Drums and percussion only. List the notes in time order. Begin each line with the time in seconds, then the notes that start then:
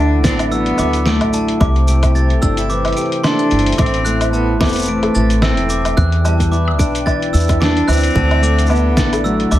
0.24 kick, snare, cabasa
0.39 closed hi-hat, cabasa, low woodblock
0.51 cabasa
0.66 closed hi-hat
0.78 cabasa, low woodblock
0.93 closed hi-hat, cabasa
1.06 snare, cabasa
1.21 closed hi-hat, low woodblock
1.33 cabasa
1.48 closed hi-hat
1.61 kick, cabasa, low woodblock
1.76 closed hi-hat
1.88 cabasa
2.03 kick, closed hi-hat, cabasa, low woodblock
2.15 cabasa
2.30 closed hi-hat
2.42 kick, cabasa
2.57 closed hi-hat, cabasa
2.70 cabasa
2.85 closed hi-hat, low woodblock
2.88 closed hi-hat
2.92 closed hi-hat
2.97 closed hi-hat, cabasa
3.01 closed hi-hat
3.06 closed hi-hat
3.12 closed hi-hat
3.24 snare, cabasa, low woodblock
3.39 closed hi-hat
3.51 closed hi-hat
3.59 closed hi-hat
3.66 closed hi-hat
3.72 closed hi-hat
3.78 kick, closed hi-hat, cabasa, low woodblock
3.86 closed hi-hat
3.94 closed hi-hat
4.06 cabasa
4.21 closed hi-hat, cabasa, low woodblock
4.33 cabasa
4.61 kick, snare, cabasa, low woodblock
4.65 cabasa
4.68 cabasa
4.72 closed hi-hat, cabasa
4.76 cabasa
4.79 cabasa
4.82 cabasa
4.85 cabasa
4.88 cabasa
5.03 closed hi-hat, low woodblock
5.15 cabasa
5.30 closed hi-hat, cabasa
5.42 snare, cabasa, low woodblock
5.57 closed hi-hat
5.69 cabasa
5.85 closed hi-hat, cabasa, low woodblock
5.97 kick, cabasa
6.12 closed hi-hat
6.25 cabasa, low woodblock
6.40 kick, closed hi-hat, cabasa
6.53 cabasa
6.68 low woodblock
6.79 kick, cabasa
6.95 closed hi-hat, cabasa
7.07 kick, cabasa, low woodblock
7.22 closed hi-hat
7.34 cabasa
7.36 cabasa
7.40 cabasa
7.42 cabasa
7.43 cabasa
7.47 kick, closed hi-hat, cabasa, low woodblock
7.50 cabasa
7.62 snare, cabasa
7.77 closed hi-hat
7.88 cabasa, low woodblock
7.92 cabasa
7.96 cabasa
8.00 closed hi-hat, cabasa
8.04 cabasa
8.07 cabasa
8.13 kick, cabasa
8.16 cabasa
8.31 closed hi-hat, low woodblock
8.43 cabasa
8.59 closed hi-hat, cabasa
8.66 cabasa, low woodblock
8.70 cabasa
8.75 cabasa
8.97 kick, snare, cabasa
9.13 closed hi-hat, cabasa, low woodblock
9.25 cabasa
9.40 closed hi-hat
9.51 cabasa, low woodblock